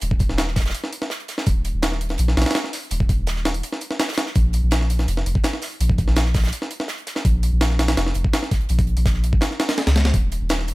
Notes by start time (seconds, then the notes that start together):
0.01 D#1, closed hi-hat, open hi-hat
0.11 kick
0.19 kick, closed hi-hat, open hi-hat
0.29 D#1, snare
0.38 snare, closed hi-hat, open hi-hat
0.47 snare
0.56 kick, snare, closed hi-hat, open hi-hat
0.60 snare, closed hi-hat
0.65 snare, closed hi-hat
0.70 snare, closed hi-hat
0.74 closed hi-hat, open hi-hat
0.84 snare
0.93 closed hi-hat, open hi-hat
1.02 snare
1.10 snare, closed hi-hat
1.20 closed hi-hat
1.28 snare, closed hi-hat, open hi-hat
1.38 snare
1.46 D#1, kick, closed hi-hat, open hi-hat
1.65 closed hi-hat, open hi-hat
1.74 D#1
1.82 snare, closed hi-hat, open hi-hat
1.92 snare
2.01 closed hi-hat, open hi-hat
2.09 snare, closed hi-hat
2.18 A#1, closed hi-hat, open hi-hat
2.28 snare
2.37 A#1, snare, closed hi-hat, open hi-hat
2.42 snare, open hi-hat
2.46 snare, open hi-hat
2.51 snare, open hi-hat
2.55 snare, closed hi-hat, open hi-hat
2.64 snare
2.73 snare, closed hi-hat, open hi-hat
2.83 closed hi-hat
2.91 D#1, closed hi-hat, open hi-hat
3.00 kick
3.09 kick, closed hi-hat, open hi-hat
3.18 D#1
3.27 snare, closed hi-hat, open hi-hat
3.36 snare
3.45 snare, closed hi-hat, open hi-hat
3.54 open hi-hat
3.63 closed hi-hat, open hi-hat
3.73 snare
3.81 closed hi-hat, open hi-hat
3.91 snare
3.99 snare, closed hi-hat, open hi-hat
4.08 snare, closed hi-hat
4.13 snare, closed hi-hat
4.17 snare, closed hi-hat, open hi-hat
4.26 snare
4.35 A#1, kick, closed hi-hat, open hi-hat
4.53 closed hi-hat, open hi-hat
4.63 A#1
4.71 snare, closed hi-hat, open hi-hat
4.81 snare
4.90 closed hi-hat, open hi-hat
4.99 snare, closed hi-hat
5.08 F1, closed hi-hat, open hi-hat
5.17 snare
5.26 F1, closed hi-hat, open hi-hat
5.35 kick
5.44 snare, closed hi-hat, open hi-hat
5.53 snare
5.62 snare, closed hi-hat, open hi-hat
5.71 closed hi-hat
5.80 A#1, closed hi-hat, open hi-hat
5.90 kick
5.98 kick, closed hi-hat, open hi-hat
6.07 A#1, snare
6.16 snare, closed hi-hat, open hi-hat
6.25 snare
6.34 kick, snare, closed hi-hat, open hi-hat
6.38 snare, closed hi-hat
6.43 snare, closed hi-hat
6.47 snare, closed hi-hat
6.52 closed hi-hat, open hi-hat
6.62 snare
6.71 closed hi-hat, open hi-hat
6.80 snare
6.88 snare, closed hi-hat
6.98 closed hi-hat
7.07 snare, closed hi-hat, open hi-hat
7.15 snare
7.25 A#1, kick, closed hi-hat, open hi-hat
7.43 closed hi-hat, open hi-hat
7.52 A#1
7.61 snare, closed hi-hat, open hi-hat
7.70 snare
7.79 snare, closed hi-hat, open hi-hat
7.87 snare, closed hi-hat, open hi-hat
7.97 F1, snare, closed hi-hat, open hi-hat
8.06 snare
8.14 F1, closed hi-hat, open hi-hat
8.24 kick
8.33 snare, closed hi-hat, open hi-hat
8.43 snare
8.51 kick, snare, closed hi-hat, open hi-hat
8.61 closed hi-hat
8.69 A#1, closed hi-hat, open hi-hat
8.79 kick, open hi-hat
8.87 closed hi-hat
8.97 A#1, open hi-hat
9.06 kick, snare, closed hi-hat, open hi-hat
9.14 snare
9.23 closed hi-hat, open hi-hat
9.33 kick
9.41 snare, closed hi-hat, open hi-hat
9.51 snare
9.59 snare, closed hi-hat, open hi-hat
9.69 snare, closed hi-hat, open hi-hat
9.78 snare, open hi-hat
9.87 C#2, snare, closed hi-hat, open hi-hat
9.95 snare, closed hi-hat, open hi-hat
10.05 snare, open hi-hat
10.14 D#1, kick, closed hi-hat, open hi-hat
10.32 closed hi-hat, open hi-hat
10.41 D#1
10.49 snare, closed hi-hat, open hi-hat
10.59 snare
10.68 closed hi-hat, open hi-hat